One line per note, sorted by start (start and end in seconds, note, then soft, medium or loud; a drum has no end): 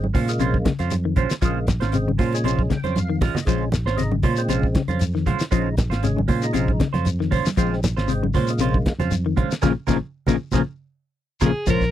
0.00 0.11 G#1 loud
0.00 high conga medium
0.14 0.38 A#2 medium
0.14 0.30 G#3 medium
0.14 0.30 C#4 medium
0.14 0.31 F4 medium
0.14 0.31 C5 medium
0.14 kick medium
0.14 open hi-hat medium
0.14 low conga medium
0.14 shekere soft
0.28 0.73 C#3 medium
0.28 0.73 G#3 medium
0.28 0.73 A#3 medium
0.28 closed hi-hat medium
0.28 shekere medium
0.39 0.63 A#1 medium
0.39 0.61 C3 medium
0.39 0.56 G#3 medium
0.39 0.56 C#4 medium
0.39 0.56 F4 medium
0.39 0.57 C5 medium
0.39 closed hi-hat medium
0.39 shekere medium
0.54 kick medium
0.54 high conga medium
0.65 0.87 C#3 medium
0.65 kick medium
0.65 snare medium
0.65 closed hi-hat medium
0.65 high conga medium
0.79 1.14 F2 medium
0.79 0.94 C#4 soft
0.79 0.94 F4 medium
0.79 0.94 C5 medium
0.79 closed hi-hat medium
0.79 shekere soft
0.90 closed hi-hat medium
0.90 high conga medium
0.90 shekere medium
1.05 1.26 D#3 medium
1.16 1.29 A#1 medium
1.16 1.33 G#3 medium
1.16 1.33 C#4 medium
1.16 1.33 F4 medium
1.16 1.33 C5 medium
1.16 kick medium
1.16 closed hi-hat medium
1.16 low conga medium
1.16 shekere soft
1.30 snare medium
1.30 closed hi-hat medium
1.30 shekere medium
1.42 1.79 A#1 loud
1.42 1.66 C#3 medium
1.42 1.63 F3 medium
1.42 1.58 G#3 medium
1.42 1.66 G#3 medium
1.42 1.58 C#4 medium
1.42 1.58 F4 medium
1.42 1.59 C5 medium
1.42 kick medium
1.42 closed hi-hat medium
1.42 shekere medium
1.46 1.67 A#3 loud
1.67 kick medium
1.67 snare medium
1.67 closed hi-hat medium
1.67 high conga medium
1.67 shekere medium
1.80 2.16 G#1 medium
1.80 1.96 C#4 soft
1.80 1.96 F4 soft
1.80 1.95 C5 medium
1.80 snare medium
1.80 closed hi-hat soft
1.80 shekere soft
1.92 2.05 C3 medium
1.92 2.11 C#3 medium
1.92 2.12 G#3 medium
1.92 2.12 C4 medium
1.92 closed hi-hat medium
1.92 shekere medium
2.08 2.29 C#3 medium
2.08 high conga medium
2.18 2.43 A#2 medium
2.18 2.35 G#3 medium
2.18 2.35 C#4 medium
2.18 2.35 F4 medium
2.18 2.35 C5 medium
2.18 kick medium
2.18 open hi-hat medium
2.18 low conga medium
2.18 shekere soft
2.32 2.78 C#3 medium
2.32 2.78 G#3 medium
2.32 2.78 C#4 medium
2.32 closed hi-hat medium
2.32 shekere medium
2.44 2.68 A#1 medium
2.44 2.66 C3 medium
2.44 2.61 G#3 medium
2.44 2.61 C#4 medium
2.44 2.61 F4 medium
2.44 2.61 C5 medium
2.44 closed hi-hat medium
2.44 shekere medium
2.59 kick medium
2.59 high conga medium
2.70 2.91 C#3 medium
2.70 2.95 G5 medium
2.70 kick medium
2.70 snare medium
2.70 closed hi-hat soft
2.70 high conga medium
2.84 3.18 F2 medium
2.84 2.99 C#4 medium
2.84 2.99 F4 soft
2.84 2.98 C5 medium
2.84 closed hi-hat soft
2.84 high conga medium
2.84 shekere soft
2.95 3.19 F5 medium
2.95 closed hi-hat medium
2.95 high conga medium
2.95 shekere medium
3.10 3.31 D#3 medium
3.21 3.33 A#1 medium
3.21 3.38 G#3 medium
3.21 3.38 C#4 medium
3.21 3.38 F4 medium
3.21 3.45 D#5 medium
3.21 kick medium
3.21 snare soft
3.21 open hi-hat medium
3.21 low conga medium
3.21 shekere soft
3.35 snare medium
3.35 low conga medium
3.35 shekere medium
3.45 3.83 A#1 medium
3.45 3.69 C#3 medium
3.45 3.69 F3 medium
3.45 3.69 G#3 medium
3.45 3.63 G#3 medium
3.45 3.70 C#4 medium
3.45 3.64 C#4 medium
3.45 3.64 F4 medium
3.45 3.64 C5 medium
3.45 kick medium
3.45 closed hi-hat medium
3.45 shekere medium
3.72 snare medium
3.72 closed hi-hat soft
3.72 high conga medium
3.72 shekere medium
3.85 4.20 G#1 medium
3.85 4.02 C#4 soft
3.85 4.01 F4 medium
3.85 4.01 C5 medium
3.85 snare medium
3.85 shekere soft
3.97 4.10 C3 medium
3.97 4.15 C#3 medium
3.97 4.15 G#3 medium
3.97 4.16 D#4 medium
3.97 snare soft
3.97 closed hi-hat medium
3.97 shekere medium
4.12 4.33 C#3 medium
4.12 high conga medium
4.23 4.47 A#2 medium
4.23 4.40 G#3 medium
4.23 4.40 C#4 medium
4.23 4.40 F4 medium
4.23 4.40 C5 medium
4.23 kick medium
4.23 open hi-hat medium
4.23 low conga medium
4.23 shekere soft
4.37 4.82 C#3 medium
4.37 4.82 G#3 medium
4.37 4.83 C4 medium
4.37 closed hi-hat medium
4.37 shekere medium
4.49 4.73 A#1 medium
4.49 4.71 C3 medium
4.49 4.65 G#3 medium
4.49 4.66 C#4 medium
4.49 4.66 F4 medium
4.49 4.66 C5 medium
4.49 closed hi-hat medium
4.49 shekere medium
4.63 kick medium
4.75 4.97 C#3 medium
4.75 kick medium
4.75 snare medium
4.75 closed hi-hat soft
4.75 high conga medium
4.88 5.23 F2 medium
4.88 5.04 C#4 soft
4.88 5.04 F4 medium
4.88 5.03 C5 medium
4.88 closed hi-hat soft
4.88 high conga medium
4.88 shekere soft
4.99 closed hi-hat medium
4.99 high conga medium
4.99 shekere medium
5.15 5.36 D#3 medium
5.15 snare soft
5.26 5.38 A#1 medium
5.26 5.43 G#3 medium
5.26 5.43 C#4 medium
5.26 5.43 F4 medium
5.26 5.43 C5 medium
5.26 kick medium
5.26 closed hi-hat soft
5.26 low conga medium
5.26 shekere soft
5.40 snare medium
5.40 closed hi-hat soft
5.40 shekere medium
5.51 5.88 A#1 medium
5.51 5.75 C#3 medium
5.51 5.73 F3 medium
5.51 5.68 G#3 medium
5.51 5.75 G#3 medium
5.51 5.68 C#4 medium
5.51 5.76 D#4 loud
5.51 5.68 F4 medium
5.51 5.68 C5 medium
5.51 kick medium
5.51 closed hi-hat medium
5.51 shekere medium
5.77 kick medium
5.77 snare medium
5.77 closed hi-hat medium
5.77 high conga medium
5.77 shekere medium
5.90 6.25 G#1 loud
5.90 6.06 C#4 soft
5.90 6.06 F4 medium
5.90 6.05 C5 medium
5.90 snare medium
5.90 closed hi-hat soft
5.90 shekere soft
6.03 6.15 C3 medium
6.03 6.21 C#3 medium
6.03 6.21 G#3 medium
6.03 6.21 C#4 medium
6.03 snare soft
6.03 closed hi-hat medium
6.03 shekere medium
6.17 6.38 C#3 medium
6.17 high conga medium
6.28 6.52 A#2 medium
6.28 6.45 G#3 medium
6.28 6.45 C#4 medium
6.28 6.45 F4 medium
6.28 6.45 C5 medium
6.28 kick medium
6.28 open hi-hat medium
6.28 low conga medium
6.28 shekere soft
6.42 6.87 C#3 medium
6.42 6.88 G#3 medium
6.42 6.88 D#4 medium
6.42 closed hi-hat medium
6.42 shekere medium
6.53 6.78 A#1 medium
6.53 6.76 C3 medium
6.53 6.70 G#3 medium
6.53 6.70 C#4 medium
6.53 6.71 F4 medium
6.53 6.71 C5 medium
6.53 closed hi-hat medium
6.53 shekere medium
6.68 kick medium
6.68 high conga medium
6.80 7.01 C#3 medium
6.80 kick medium
6.80 snare medium
6.80 closed hi-hat medium
6.80 high conga medium
6.93 7.29 F2 medium
6.93 7.09 C#4 soft
6.93 7.08 F4 medium
6.93 7.08 C5 medium
6.93 snare soft
6.93 closed hi-hat soft
6.93 high conga medium
6.93 low conga medium
6.93 shekere soft
7.05 closed hi-hat medium
7.05 high conga medium
7.05 shekere medium
7.20 7.41 D#3 medium
7.20 snare soft
7.31 7.45 A#1 medium
7.31 7.48 G#3 medium
7.31 7.48 C#4 medium
7.31 7.48 F4 medium
7.31 7.48 C5 medium
7.31 kick medium
7.31 open hi-hat medium
7.31 low conga medium
7.31 shekere soft
7.46 snare medium
7.46 high conga medium
7.46 shekere medium
7.57 7.94 A#1 loud
7.57 7.80 C#3 medium
7.57 7.79 F3 medium
7.57 7.74 G#3 medium
7.57 7.80 G#3 medium
7.57 7.81 C4 medium
7.57 7.74 F4 medium
7.57 7.74 C5 medium
7.57 muted clean electric guitar stroke medium
7.57 kick medium
7.57 closed hi-hat medium
7.57 shekere medium
7.73 snare soft
7.83 snare medium
7.83 closed hi-hat soft
7.83 high conga medium
7.83 shekere medium
7.97 8.31 G#1 medium
7.97 8.12 C#4 soft
7.97 8.12 F4 soft
7.97 8.11 C5 medium
7.97 snare medium
7.97 shekere soft
8.08 8.20 C3 medium
8.08 8.26 C#3 medium
8.08 8.27 G#3 medium
8.08 8.27 C4 medium
8.08 closed hi-hat medium
8.08 shekere medium
8.23 8.44 C#3 medium
8.23 high conga medium
8.34 8.58 A#2 medium
8.34 8.50 G#3 medium
8.34 8.50 C#4 medium
8.34 8.51 F4 medium
8.34 8.51 C5 medium
8.34 kick medium
8.34 snare soft
8.34 open hi-hat medium
8.34 low conga medium
8.34 shekere soft
8.48 8.93 C#3 medium
8.48 8.93 G#3 medium
8.48 8.94 A#3 medium
8.48 closed hi-hat medium
8.48 shekere medium
8.59 8.83 A#1 medium
8.59 8.81 C3 medium
8.59 8.76 G#3 medium
8.59 8.76 C#4 medium
8.59 8.77 F4 medium
8.59 8.77 C5 medium
8.59 closed hi-hat medium
8.59 shekere medium
8.74 kick medium
8.74 high conga medium
8.86 kick medium
8.86 snare medium
8.86 closed hi-hat soft
8.86 high conga medium
8.98 9.33 F2 medium
8.98 9.14 C#4 soft
8.98 9.14 F4 medium
8.98 9.14 C5 medium
8.98 snare soft
8.98 closed hi-hat soft
8.98 high conga medium
8.98 low conga medium
8.98 shekere soft
9.11 closed hi-hat medium
9.11 high conga medium
9.11 shekere medium
9.26 9.47 D#3 medium
9.36 9.49 A#1 medium
9.36 9.53 G#3 medium
9.36 9.53 C#4 medium
9.36 9.53 F4 medium
9.36 9.53 C5 medium
9.36 kick medium
9.36 closed hi-hat medium
9.36 low conga medium
9.36 shekere soft
9.51 snare medium
9.51 closed hi-hat medium
9.51 shekere medium
9.62 9.73 A#1 medium
9.62 9.72 A#2 medium
9.62 9.72 C#3 medium
9.62 9.71 F3 medium
9.62 9.72 F3 medium
9.62 9.71 G#3 medium
9.62 9.71 A#3 medium
9.62 9.71 F4 loud
9.62 9.71 G#4 medium
9.62 9.71 A#4 medium
9.62 kick medium
9.62 snare medium
9.62 low conga medium
9.62 shekere loud
9.87 9.99 A#1 medium
9.87 9.97 A#2 medium
9.87 9.97 C#3 medium
9.87 9.97 F3 medium
9.87 9.97 F3 loud
9.87 9.97 G#3 medium
9.87 9.97 A#3 medium
9.87 9.96 F4 medium
9.87 9.96 G#4 medium
9.87 9.96 A#4 medium
9.87 kick medium
9.87 snare medium
9.87 low conga medium
9.87 shekere medium
10.27 10.36 A#1 medium
10.27 10.35 A#2 medium
10.27 10.36 C#3 loud
10.27 10.35 F3 medium
10.27 10.35 G#3 medium
10.27 10.35 A#3 medium
10.27 10.35 F4 medium
10.27 10.35 G#4 medium
10.27 10.35 A#4 medium
10.27 kick medium
10.27 snare medium
10.27 low conga medium
10.27 shekere medium
10.52 10.62 A#1 medium
10.52 10.61 A#2 medium
10.52 10.61 C#3 medium
10.52 10.60 F3 medium
10.52 10.61 F3 medium
10.52 10.61 G#3 medium
10.52 10.61 A#3 medium
10.52 10.61 F4 medium
10.52 10.61 G#4 medium
10.52 10.61 A#4 medium
10.52 kick medium
10.52 snare medium
10.52 low conga medium
10.52 shekere medium
11.41 11.52 A#1 medium
11.41 11.51 A#2 medium
11.41 11.51 C#3 medium
11.41 11.50 F3 medium
11.41 11.51 F3 medium
11.41 11.50 G#3 medium
11.41 11.51 A#3 medium
11.41 11.50 F4 medium
11.41 11.50 G#4 medium
11.41 11.50 A#4 medium
11.41 kick medium
11.41 snare medium
11.41 low conga medium
11.41 shekere medium
11.46 11.67 G#4 medium
11.67 11.91 A#1 medium
11.67 11.89 F3 loud
11.67 11.83 G#3 medium
11.67 11.83 C#4 medium
11.67 11.83 F4 medium
11.67 11.91 A#4 loud
11.67 11.83 C5 medium
11.67 kick medium
11.67 closed hi-hat medium
11.67 low conga medium
11.67 shekere loud
11.81 kick medium
11.81 snare soft
11.81 shekere soft